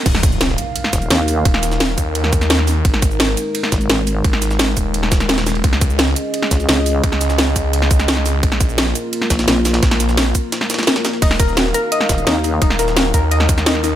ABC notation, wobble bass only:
X:1
M:4/4
L:1/8
Q:1/4=172
K:Dbmix
V:1 name="Wobble bass" clef=bass
z4 z E,,, E,,2 | z8 | z4 z A,,, A,,,2 | z8 |
z4 z D,, D,,2 | z8 | z4 z B,,, B,,,2 | z8 |
z4 z E,,, E,,2 | z8 |]